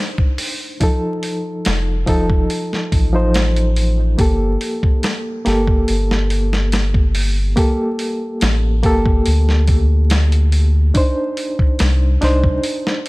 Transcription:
Already playing: reed electric piano D4 D#4 C5
0.18 kick
0.38 open hi-hat
0.80 reed electric piano F3 D#4 A4, kick, open hi-hat
1.23 open hi-hat
1.65 sub bass F1, snare, open hi-hat
2.06 sub bass F1, reed electric piano F3 D#4 A4, kick, open hi-hat
2.30 kick
2.50 open hi-hat
2.73 snare
2.92 sub bass A1, kick, open hi-hat
3.13 reed electric piano F3 D#4 C5
3.34 snare, open hi-hat
3.56 closed hi-hat
3.76 open hi-hat
4.18 sub bass G1, reed electric piano A#3 G4 A4, kick, open hi-hat
4.61 open hi-hat
4.83 kick
5.03 snare, open hi-hat
5.45 sub bass G1, reed electric piano A#3 G4 A4, snare, open hi-hat
5.67 kick
5.88 sub bass G1, open hi-hat
6.11 snare
6.30 open hi-hat
6.53 snare
6.72 snare, open hi-hat
6.94 kick
7.15 open hi-hat
7.56 reed electric piano A#3 G4 A4, kick, open hi-hat
7.99 open hi-hat
8.41 sub bass A1, snare, open hi-hat
8.83 sub bass G1, reed electric piano A#3 G4 A4, kick, open hi-hat
9.06 kick
9.26 sub bass D2, open hi-hat
9.49 snare
9.68 kick, open hi-hat
10.10 snare, open hi-hat
10.32 closed hi-hat
10.52 open hi-hat
10.94 reed electric piano D4 D#4 C5, kick, open hi-hat
11.37 open hi-hat
11.59 kick
11.79 sub bass C2, snare, open hi-hat
12.21 sub bass C2, reed electric piano D4 D#4 C5, snare, open hi-hat
12.44 kick
12.64 open hi-hat
12.87 snare

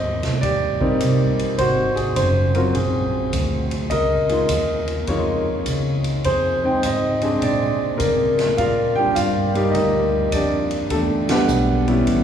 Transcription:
Already playing: grand piano C5 D#5
0.03 upright bass D#2
0.21 upright bass C2, snare, ride
0.41 upright bass D#2, grand piano G4 D5, kick, ride
0.80 grand piano G3 A#3 C4 D#4, muted upright bass stroke, kick
1.00 upright bass C2, kick, hi-hat pedal, ride
1.38 muted upright bass stroke, ride
1.58 upright bass G#1, grand piano F#4 C5, kick, ride
1.96 grand piano G#4, ride
2.16 upright bass F#1, grand piano C5, kick, hi-hat pedal, ride
2.55 grand piano F#3 A#3 C4 F4 A#4, ride
2.74 upright bass A#1, grand piano C4 G#4, kick, ride
3.32 upright bass D2, kick, hi-hat pedal, ride
3.71 ride
3.90 upright bass C#2, grand piano A#4 D#5, kick, ride
4.29 grand piano G#3 A#3 D#4 F4, ride
4.49 upright bass D#2, kick, hi-hat pedal, ride
4.88 ride
5.07 upright bass F2, grand piano G#3 A#3 D#4 F4 C#5, kick, ride
5.66 upright bass C#2, kick, hi-hat pedal, ride
6.04 ride
6.24 upright bass F2, grand piano G#4 C5, kick, ride
6.64 grand piano G#3 C4 D#4 G5
6.83 upright bass G#2, grand piano D#5, kick, hi-hat pedal, ride
7.21 grand piano G#3 C4 D4 G#4, ride
7.41 upright bass A#2, grand piano G#4 D5, kick, ride
7.98 upright bass C#3, grand piano A#3 A#4 D5, kick, hi-hat pedal, ride
8.39 snare, ride
8.57 upright bass A#2, grand piano F4 A#4 D5 F5, kick, ride
8.96 grand piano G3 A#3 D4 F4 G4 G5
9.15 upright bass G2, grand piano F4 D5 F5, kick, hi-hat pedal, ride
9.54 grand piano G3 A#3 D#4 G4, ride
9.72 upright bass D2, grand piano D#4 G4 A#4 D#5, kick, ride
10.32 upright bass F2, grand piano D4 G4 D5, kick, hi-hat pedal, ride
10.71 ride
10.90 upright bass E2, grand piano A3 D4 A4, kick, ride
11.29 grand piano G3 B3 D4 G4 B4 F#5, snare, ride
11.48 upright bass B1, hi-hat pedal
11.87 grand piano G3 B3 C#4 E4, ride
12.07 upright bass A1, kick, ride

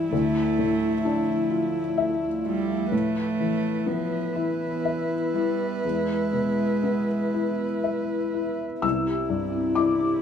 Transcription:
Already playing: cello E3, ambient pad G3 E5, felt piano E4 G4 E5, viola E4
0.11 felt piano D2, ambient pad F3 A3, cello A3
0.59 felt piano A2
1.05 felt piano D4
1.50 felt piano F4
1.98 felt piano E5
2.46 cello G3, felt piano F4
2.92 felt piano A2, cello A3, ambient pad B3 E4 E5, viola B4
3.40 felt piano E3
3.86 cello F3, felt piano B3
4.36 cello E3, felt piano E4
4.85 felt piano E5
5.34 cello G3, felt piano E4
5.84 felt piano E2, cello G#3
6.33 felt piano B2
6.83 felt piano B3
7.34 felt piano E4
7.84 felt piano E5
8.34 felt piano E4
8.81 felt piano C2 E6, ambient pad C4 D4 D5, marimba C4, viola E4
9.06 marimba G4
9.30 felt piano G2
9.53 marimba C4
9.75 marimba E4, felt piano E4 D6
10.00 marimba G4

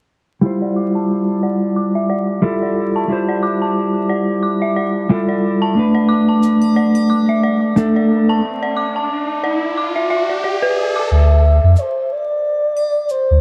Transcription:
0.41 clean electric guitar G3 E4 F4
0.46 clean electric guitar C5
0.62 synth bell D5
0.76 synth bell D6
0.95 synth bell A5
1.43 synth bell D5
1.76 synth bell D6
1.95 synth bell E5
2.10 synth bell D5
2.42 clean electric guitar G3 E4 F4 A4
2.62 synth bell D5
2.96 synth bell A5
3.08 clean electric guitar G3 E4 F4
3.12 clean electric guitar C5
3.29 synth bell D5
3.43 synth bell D6
3.62 synth bell A5
4.09 synth bell D5
4.43 synth bell D6
4.62 synth bell E5
4.76 synth bell D5
5.09 clean electric guitar G3 E4 F4 A4
5.29 synth bell D5
5.62 synth bell A5
5.75 clean electric guitar A3 D4, riser
5.79 clean electric guitar B4
5.95 synth bell D5
6.09 synth bell D6
6.29 synth bell A5
6.43 shaker
6.62 triangle
6.76 synth bell D5
6.95 triangle
7.10 synth bell D6
7.29 synth bell E5
7.43 synth bell D5
7.76 clean electric guitar A3 D4 A4, shaker
7.96 synth bell D5
8.29 synth bell A5
8.63 synth bell D5
8.77 synth bell D6
8.96 synth bell A5
9.44 synth bell D5
9.77 synth bell D6
9.96 synth bell E5
10.10 synth bell E5
10.29 synth bell D5
10.44 synth bell D5, soft synth lead D5
10.62 synth bell B4
10.96 synth bell D6
11.11 sub bass D2, soft synth lead E5
11.63 sub bass F2
11.76 soft synth lead C5, shaker
12.11 soft synth lead D5
12.77 triangle
13.09 soft synth lead C5, shaker
13.30 sub bass D2

